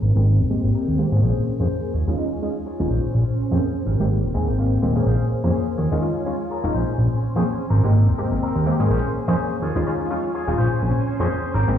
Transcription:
0.02 analog synth bass G#1, string machine C4 A#4 G5, clean electric guitar C4 G4 A#4
0.16 analog synth bass G#1, analog polysynth G#3 A#3 C4 G4
0.40 analog synth bass D#1
0.50 analog polysynth G#3 A#3 C4 G4, muted clean electric guitar stroke
0.64 analog synth bass G#1
0.74 clean electric guitar C4 G4 A#4
0.88 analog synth bass D#2
0.98 analog polysynth G#3 A#3 C4 G4
1.12 analog synth bass G#2, analog polysynth A#3 C#4 G#4 C5
1.22 analog synth bass A#1, clean electric guitar C#4 G#4 C5, string machine C5 G#5
1.60 analog synth bass F2, analog polysynth A#3 C#4 G#4 C5, clean electric guitar C#4 G#4 C5
1.94 analog synth bass D#2, string machine F4 C#5, clean electric guitar F4 G#4 C#5
2.08 analog synth bass D#2, analog polysynth G#3 C#4 D#4 F4
2.18 analog polysynth G#3 C#4 D#4 F4
2.42 analog polysynth G#3 C#4 D#4 F4, muted clean electric guitar stroke
2.66 clean electric guitar F4 G#4 C#5
2.79 analog synth bass D#1, analog polysynth G#3 C#4 D#4 F4
2.90 analog synth bass A#1, string machine C#4 C5, clean electric guitar C#4 G#4 C5
3.14 analog synth bass A#1
3.51 analog synth bass F2, analog polysynth A#3 C4 C#4 G#4, clean electric guitar C#4 G#4 C5
3.86 analog synth bass G#1, string machine C4 A#4, clean electric guitar C4 G4 A#4
3.99 analog synth bass G#1, analog polysynth G#3 A#3 C4 G4
4.24 analog synth bass D#1
4.34 analog synth bass D#2, analog polysynth G#3 A#3 C4, clean electric guitar G#5, muted clean electric guitar stroke
4.48 analog synth bass G#1, clean electric guitar G5
4.58 clean electric guitar C4 G4 A#4 F5
4.82 analog synth bass D#1, analog polysynth G#3 A#3 C4 G4, clean electric guitar D#5
4.95 analog polysynth A#3 C#4 G#4 C5
5.06 analog synth bass A#1, clean electric guitar C#4 G#4 C5, string machine C5 G#5
5.44 analog synth bass F2, analog polysynth A#3 C#4 G#4 C5, clean electric guitar C#4 G#4 C5
5.78 analog synth bass D#2, string machine F4 C#5, clean electric guitar F4 G#4 C#5
5.92 analog synth bass D#2, analog polysynth G#3 C#4 D#4 F4
6.02 analog polysynth G#3 C#4 D#4 F4
6.26 analog polysynth G#3 C#4 D#4 F4, muted clean electric guitar stroke
6.50 clean electric guitar F4 G#4 A#4
6.64 analog synth bass D#1, analog polysynth G#3 C#4 D#4 F4
6.74 analog synth bass A#1, string machine C#4 C5, clean electric guitar C#4 G#4 C5
6.98 analog synth bass A#1
7.36 analog synth bass F2, analog polysynth A#3 C4 C#4 G#4, clean electric guitar C#4 G#4 C5
7.70 analog synth bass G#1, string machine C4 A#4 G5, clean electric guitar C4 G4 A#4
7.83 analog synth bass G#1, analog polysynth G#3 A#3 C4 G4
8.08 analog synth bass D#1
8.18 analog polysynth G#3 A#3 C4 G4, muted clean electric guitar stroke
8.31 analog synth bass G#1
8.42 clean electric guitar C4 G4 A#4
8.56 analog synth bass D#2
8.66 analog polysynth G#3 A#3 C4 G4
8.80 analog synth bass G#2, analog polysynth A#3 C#4 G#4 C5
8.90 analog synth bass A#1, clean electric guitar C#4 G#4 C5, string machine C5 G#5
9.28 analog synth bass F2, analog polysynth A#3 C#4 G#4 C5, clean electric guitar C#4 G#4 C5
9.62 analog synth bass D#2, string machine F4 C#5 G#5, clean electric guitar F4 G#4 C#5
9.75 analog synth bass D#2, analog polysynth G#3 C#4 D#4 F4
9.86 analog polysynth G#3 C#4 D#4 F4
10.10 analog polysynth G#3 C#4 D#4 F4, muted clean electric guitar stroke
10.34 clean electric guitar F4 G#4 C#5
10.47 analog synth bass D#1, analog polysynth G#3 C#4 D#4 F4
10.58 analog synth bass A#1, string machine C#4 C5, clean electric guitar C#4 G#4 C5
10.82 analog synth bass A#1
11.20 analog synth bass F2, analog polysynth A#3 C4 C#4 G#4, clean electric guitar C#4 G#4 C5
11.54 analog synth bass G#1, string machine C4 A#4 G5, clean electric guitar C4 G4 A#4
11.68 analog synth bass G#1, analog polysynth G#3 A#3 C4 G4

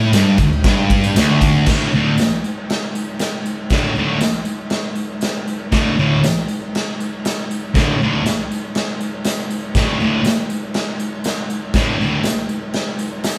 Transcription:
Already playing: distorted electric guitar A2
0.13 distorted electric guitar G2, snare, ride, tambourine
0.38 distorted electric guitar D2, kick, ride, tambourine
0.53 tambourine
0.64 distorted electric guitar G2, kick, snare, ride
0.90 kick, ride
1.04 tambourine
1.16 distorted electric guitar D2, snare, ride, tambourine
1.41 kick, ride, tambourine
1.66 distorted electric guitar D2 A2 D3, kick, snare, crash, tambourine
1.93 distorted electric guitar D2 A2 D3, tambourine
2.18 snare, tambourine, crash
2.44 tambourine
2.70 snare, crash
2.95 tambourine
3.19 snare, tambourine, crash
3.46 tambourine
3.70 distorted electric guitar D2 A2 D3, kick, snare, tambourine, crash
3.95 distorted electric guitar D2 A2 D3, tambourine
4.21 snare, tambourine, crash
4.45 tambourine
4.70 snare, crash
4.96 tambourine
5.21 snare, tambourine, crash
5.48 tambourine
5.72 distorted electric guitar D2 A2 D3, kick, snare, tambourine, crash
5.98 distorted electric guitar D2 A2 D3, tambourine
6.24 snare, tambourine, crash
6.48 tambourine
6.75 snare, crash
7.00 tambourine
7.25 snare, tambourine, crash
7.51 tambourine
7.74 distorted electric guitar D2 A2 D3, kick, snare, tambourine, crash
8.01 distorted electric guitar D2 A2 D3, tambourine
8.26 snare, tambourine, crash
8.51 tambourine
8.75 snare, crash
9.01 tambourine
9.24 snare, tambourine, crash
9.50 tambourine
9.75 distorted electric guitar D2 A2 D3, kick, snare, tambourine, crash
9.99 distorted electric guitar D2 A2 D3, tambourine
10.25 snare, tambourine, crash
10.50 tambourine
10.74 snare, crash
10.99 tambourine
11.24 snare, tambourine, crash
11.50 tambourine
11.74 distorted electric guitar D2 A2 D3, kick, snare, tambourine, crash
11.99 distorted electric guitar D2 A2 D3, tambourine
12.23 snare, tambourine, crash
12.49 tambourine
12.74 snare, crash
12.99 tambourine
13.24 snare, tambourine, crash

